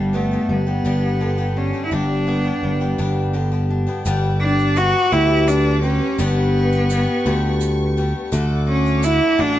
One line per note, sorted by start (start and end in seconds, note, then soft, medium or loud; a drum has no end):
0.00 0.36 G1 medium
0.00 0.13 G2 medium
0.00 0.13 D3 medium
0.00 0.12 G3 medium
0.00 0.16 G3 medium
0.00 0.13 B3 medium
0.00 0.13 D4 medium
0.00 0.14 G4 medium
0.13 0.31 G3 medium
0.13 0.53 A3 medium
0.13 0.32 B3 medium
0.13 0.31 D4 medium
0.13 0.30 G4 medium
0.31 0.67 G3 soft
0.31 0.67 B3 soft
0.31 0.66 D4 soft
0.31 0.65 G4 soft
0.49 0.78 G1 medium
0.49 2.63 G3 medium
0.49 1.59 B3 medium
0.67 0.84 G3 soft
0.67 0.84 B3 soft
0.67 0.85 D4 soft
0.67 0.85 G4 medium
0.84 1.71 G1 medium
0.84 1.20 G2 medium
0.84 1.21 D3 medium
0.84 1.19 G3 medium
0.84 1.20 B3 medium
0.84 1.21 D4 medium
0.84 1.21 G4 medium
1.21 1.88 D3 medium
1.21 1.38 G3 medium
1.21 1.37 B3 medium
1.21 1.37 D4 medium
1.21 1.37 G4 medium
1.38 1.74 G3 soft
1.38 1.74 B3 soft
1.38 1.73 D4 soft
1.38 1.72 G4 medium
1.57 1.85 C#4 medium
1.57 1.92 D4 medium
1.73 1.91 G3 soft
1.73 1.91 B3 soft
1.73 1.91 D4 soft
1.73 1.91 G4 medium
1.85 1.94 E4 medium
1.91 2.50 G1 medium
1.91 2.27 G2 medium
1.91 2.27 D3 medium
1.91 2.26 G3 medium
1.91 2.26 B3 medium
1.91 2.27 D4 medium
1.91 3.35 D4 medium
1.91 2.27 G4 medium
2.27 2.45 G3 medium
2.27 2.44 B3 medium
2.27 2.44 D4 medium
2.27 2.43 G4 medium
2.44 2.81 G3 soft
2.44 2.80 B3 soft
2.44 2.80 D4 soft
2.44 2.79 G4 medium
2.63 2.92 G1 medium
2.63 4.01 G3 medium
2.80 2.98 G3 soft
2.80 2.98 B3 soft
2.80 2.98 D4 soft
2.80 2.99 G4 medium
2.98 3.85 G1 medium
2.98 3.34 G2 medium
2.98 3.34 D3 medium
2.98 3.32 G3 medium
2.98 3.33 B3 medium
2.98 3.33 D4 medium
2.98 3.34 G4 medium
3.33 4.01 D3 medium
3.33 3.52 G3 medium
3.33 3.51 B3 medium
3.33 3.51 D4 medium
3.33 3.50 G4 medium
3.51 3.87 G3 soft
3.51 3.87 B3 soft
3.51 3.86 D4 medium
3.51 3.85 G4 medium
3.70 4.02 D4 medium
3.87 4.05 G3 soft
3.87 4.05 B3 soft
3.87 4.06 D4 soft
3.87 4.05 G4 medium
4.05 4.92 G1 loud
4.05 4.77 G2 medium
4.05 4.77 D3 medium
4.05 4.75 G3 loud
4.05 4.75 B3 medium
4.05 4.77 D4 loud
4.05 4.77 G4 medium
4.05 8.28 B4 medium
4.05 6.17 D6 loud
4.05 shaker medium
4.41 4.78 D4 loud
4.59 shaker soft
4.76 5.11 G3 medium
4.76 5.11 B3 medium
4.76 5.12 D4 medium
4.76 5.13 F#4 loud
4.76 shaker medium
5.12 5.99 D2 loud
5.12 5.84 G2 medium
5.12 5.84 D3 medium
5.12 5.83 G3 medium
5.12 5.83 B3 medium
5.12 6.19 D4 medium
5.12 5.49 E4 loud
5.12 5.81 G4 medium
5.48 5.83 D4 loud
5.48 shaker loud
5.83 6.18 G3 soft
5.83 6.18 B3 medium
5.83 6.21 C#4 loud
5.83 6.19 G4 medium
6.18 7.05 G1 loud
6.18 6.90 G2 medium
6.18 6.90 D3 medium
6.18 6.89 G3 medium
6.18 7.97 B3 loud
6.18 6.90 B3 medium
6.18 6.91 D4 medium
6.18 6.91 G4 loud
6.18 8.30 C#6 loud
6.18 shaker medium
6.72 shaker soft
6.90 7.25 G3 medium
6.90 7.25 B3 medium
6.90 7.25 D4 medium
6.90 7.25 G4 medium
6.90 shaker medium
7.26 8.12 D2 loud
7.26 7.97 G2 medium
7.26 7.97 D3 medium
7.26 7.97 G3 medium
7.26 7.97 B3 medium
7.26 7.97 D4 medium
7.26 7.96 G4 medium
7.61 shaker loud
7.97 8.32 G3 medium
7.97 8.33 B3 medium
7.97 8.32 D4 medium
7.97 8.32 G4 medium
8.32 9.18 D2 loud
8.32 9.39 D3 medium
8.32 9.02 A3 medium
8.32 9.03 F#4 loud
8.32 9.59 A4 medium
8.32 9.04 A4 loud
8.32 9.59 F#5 medium
8.32 9.59 D6 loud
8.32 shaker loud
8.68 9.06 C#4 loud
8.86 shaker soft
9.03 9.38 A3 medium
9.03 9.39 D4 medium
9.03 9.41 E4 loud
9.03 9.37 F#4 medium
9.03 9.37 A4 medium
9.03 shaker loud
9.38 9.59 A1 loud
9.38 9.59 D3 medium
9.38 9.59 A3 medium
9.38 9.59 D4 loud
9.38 9.59 F#4 medium
9.38 9.59 A4 medium